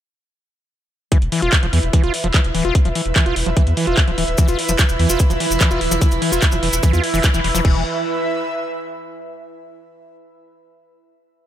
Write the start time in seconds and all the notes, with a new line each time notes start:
1.12 E3 E4, kick, closed hi-hat
1.18 E1 B4 E5, closed hi-hat
1.32 E3, open hi-hat
1.42 E1 F4, closed hi-hat
1.53 kick, clap, closed hi-hat
1.63 E1 F3, closed hi-hat
1.73 E2 E3, open hi-hat
1.83 E1, closed hi-hat
1.93 E3, kick, closed hi-hat
2.04 E1 F4, closed hi-hat
2.14 open hi-hat
2.24 E1 F3, closed hi-hat
2.34 E3, kick, clap, closed hi-hat
2.44 E1, closed hi-hat
2.55 D1 E3, open hi-hat
2.65 E1 F4, closed hi-hat
2.75 kick, closed hi-hat
2.85 E1 F3, closed hi-hat
2.95 E3, open hi-hat
3.06 E1, closed hi-hat
3.16 E3, kick, clap, closed hi-hat
3.26 E1 F4, closed hi-hat
3.36 E1, open hi-hat
3.46 E1 F3, closed hi-hat
3.57 E3, kick, closed hi-hat
3.67 E2, closed hi-hat
3.77 E3, open hi-hat
3.87 E1 F4, closed hi-hat
3.97 kick, clap, closed hi-hat
4.08 D1 F3, closed hi-hat
4.18 D1 E3, open hi-hat
4.28 D1, closed hi-hat
4.38 E3 E4, kick, closed hi-hat, maracas
4.48 E1 F4, closed hi-hat, maracas
4.59 open hi-hat
4.69 E1 F3, closed hi-hat, maracas
4.78 E3, kick, clap, closed hi-hat, maracas
4.89 E1, closed hi-hat, maracas
4.99 E2 E3, open hi-hat
5.09 E1 F4, maracas
5.20 kick, closed hi-hat, maracas
5.30 E1 F3, closed hi-hat, maracas
5.40 E3, open hi-hat
5.50 E1, closed hi-hat, maracas
5.60 E3, kick, clap, closed hi-hat, maracas
5.71 E1 F4, closed hi-hat, maracas
5.81 D1, open hi-hat
5.91 E1 F3, closed hi-hat, maracas
6.01 E3, kick, closed hi-hat, maracas
6.11 E1, closed hi-hat, maracas
6.22 E3, open hi-hat
6.32 E1 F4, closed hi-hat, maracas
6.42 kick, clap, closed hi-hat, maracas
6.52 E1 F3, closed hi-hat, maracas
6.63 E1 E3, open hi-hat
6.73 E1, closed hi-hat, maracas
6.83 E3, kick, closed hi-hat, maracas
6.93 E2 F4, closed hi-hat, maracas
7.04 open hi-hat
7.14 E1 E3, open hi-hat, maracas
7.24 E3, kick, clap, closed hi-hat, maracas
7.34 E1 E3, closed hi-hat, maracas
7.44 E1 E3, open hi-hat
7.55 E1 F3, closed hi-hat, maracas
7.65 E1 E3 E4, kick, crash
7.71 B4
7.77 E5